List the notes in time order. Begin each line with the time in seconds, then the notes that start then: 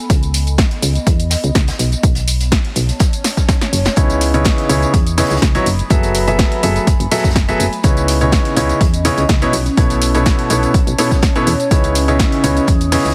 Already playing: B3 G#5 B5
0.10 C#2, kick, closed hi-hat, tambourine
0.20 D#5, closed hi-hat, tambourine
0.34 closed hi-hat, open hi-hat, tambourine
0.47 closed hi-hat, tambourine
0.58 kick, snare, closed hi-hat, tambourine
0.71 closed hi-hat
0.82 C#2, closed hi-hat, open hi-hat, tambourine
0.95 closed hi-hat, tambourine
1.06 E2, kick, closed hi-hat, tambourine
1.20 closed hi-hat, tambourine
1.30 snare, closed hi-hat, open hi-hat, tambourine
1.44 C#2, closed hi-hat, tambourine
1.55 C#2, kick, snare, closed hi-hat, tambourine
1.68 snare, closed hi-hat, tambourine
1.79 B1, closed hi-hat, open hi-hat, tambourine
1.92 closed hi-hat, tambourine
2.03 B1, kick, closed hi-hat, tambourine
2.15 C#5, closed hi-hat, tambourine
2.28 open hi-hat, tambourine
2.40 A5, closed hi-hat, tambourine
2.52 kick, snare, closed hi-hat, tambourine
2.65 closed hi-hat
2.76 B1, closed hi-hat, open hi-hat, tambourine
2.89 closed hi-hat, tambourine
2.99 kick, snare, closed hi-hat, tambourine, swell
3.13 closed hi-hat, tambourine
3.24 snare, closed hi-hat, open hi-hat, tambourine
3.37 kick, snare, closed hi-hat, tambourine
3.48 kick, snare, closed hi-hat, tambourine
3.61 snare, closed hi-hat, tambourine
3.73 F#1, closed hi-hat, open hi-hat, tambourine
3.85 snare, closed hi-hat, tambourine
3.96 C#2 C#3 B3 D#4 E4 C#5, kick, closed hi-hat, tambourine
4.07 D#6, closed hi-hat, tambourine
4.21 closed hi-hat, open hi-hat, tambourine
4.34 C#3 B3 D#4 E4 C#5, closed hi-hat, tambourine
4.44 kick, snare, closed hi-hat, tambourine
4.58 closed hi-hat
4.69 C#2 C#3 B3 D#4 E4 C#5 B5, closed hi-hat, open hi-hat, tambourine
4.82 closed hi-hat, tambourine
4.94 E2, kick, closed hi-hat, tambourine
5.07 closed hi-hat, tambourine
5.18 C#3 B3 D#4 E4 C#5, snare, closed hi-hat, open hi-hat, tambourine
5.25 snare, closed hi-hat
5.30 C#2, snare, closed hi-hat, tambourine
5.37 snare, closed hi-hat
5.41 C#2, kick, snare, closed hi-hat, tambourine
5.55 F#3 B3 D#4 E4 C#5, closed hi-hat, tambourine
5.66 F#1, closed hi-hat, open hi-hat, tambourine
5.79 closed hi-hat, tambourine
5.87 F#1 F#3 A3 B3 G#4 A4 E5, kick, closed hi-hat, tambourine
6.03 closed hi-hat, tambourine
6.15 G#5, closed hi-hat, open hi-hat, tambourine
6.27 F#3 B3 G#4 A4 E5, closed hi-hat, tambourine
6.39 kick, snare, closed hi-hat, tambourine
6.52 closed hi-hat
6.63 F#1 F#3 B3 G#4 A4 E5, closed hi-hat, open hi-hat, tambourine
6.76 closed hi-hat, tambourine
6.87 F#1, kick, closed hi-hat, tambourine
7.00 F#1, closed hi-hat, tambourine
7.11 F#3 B3 G#4 A4 E5, snare, closed hi-hat, open hi-hat, tambourine
7.18 snare, closed hi-hat
7.24 F#1, kick, snare, closed hi-hat, tambourine
7.30 snare, closed hi-hat
7.36 kick, snare, closed hi-hat, tambourine
7.48 F#3 B3 G#4 A4 E5, closed hi-hat, tambourine
7.60 F#1, closed hi-hat, open hi-hat, tambourine
7.73 closed hi-hat, tambourine
7.83 C#2 C#3 B3 C#4 D#4 E4 C#5, kick, closed hi-hat, tambourine
7.97 closed hi-hat, tambourine
8.08 D#5, closed hi-hat, open hi-hat, tambourine
8.21 C#3 B3 D#4 E4 C#5, closed hi-hat, tambourine
8.32 kick, snare, closed hi-hat, tambourine
8.45 closed hi-hat
8.56 C#2 C#3 B3 D#4 E4 C#5, closed hi-hat, open hi-hat, tambourine
8.69 closed hi-hat, tambourine
8.81 E2, kick, closed hi-hat, tambourine
8.94 closed hi-hat, tambourine
9.05 C#3 B3 D#4 E4 C#5, closed hi-hat, open hi-hat, tambourine
9.17 C#2, closed hi-hat, tambourine
9.29 C#2, kick, snare, closed hi-hat, tambourine
9.42 B2 B3 D#4 E4 C#5, closed hi-hat, tambourine
9.53 B1, closed hi-hat, open hi-hat, tambourine
9.66 closed hi-hat, tambourine
9.77 B1 B2 B3 E4 A4 C#5, kick, closed hi-hat, tambourine
9.87 A5, closed hi-hat, tambourine
10.02 closed hi-hat, open hi-hat, tambourine
10.14 B2 B3 E4 A4 C#5, closed hi-hat, tambourine
10.25 C#5, kick, snare, closed hi-hat, tambourine
10.39 closed hi-hat
10.50 B1 B2 B3 E4 A4 C#5, closed hi-hat, open hi-hat, tambourine
10.63 closed hi-hat, tambourine
10.74 B1, kick, closed hi-hat, tambourine
10.87 B1, closed hi-hat, tambourine
10.98 B2 B3 E4 A4 C#5, closed hi-hat, open hi-hat, tambourine
11.11 kick, snare, closed hi-hat, tambourine
11.22 kick, snare, closed hi-hat, tambourine
11.36 B2 B3 E4 A4 C#5, closed hi-hat, tambourine
11.47 E2, closed hi-hat, open hi-hat, tambourine
11.60 closed hi-hat, tambourine
11.71 C#2 C#3 B3 D#4 E4 C#5, kick, closed hi-hat, tambourine
11.84 closed hi-hat, tambourine
11.95 closed hi-hat, open hi-hat, tambourine
12.05 C#3 B3 D#4 E4 C#5 D#6, closed hi-hat, tambourine
12.19 kick, snare, closed hi-hat, tambourine
12.32 closed hi-hat
12.43 C#2 C#3 B3 D#4 E4 C#5, closed hi-hat, open hi-hat, tambourine
12.48 B5
12.57 closed hi-hat, tambourine
12.67 E2, kick, closed hi-hat, tambourine
12.81 closed hi-hat, tambourine
12.92 C#3 B3 D#4 E4 C#5, snare, closed hi-hat, open hi-hat, tambourine
12.99 snare, closed hi-hat
13.05 C#2, snare, closed hi-hat, tambourine
13.10 snare, closed hi-hat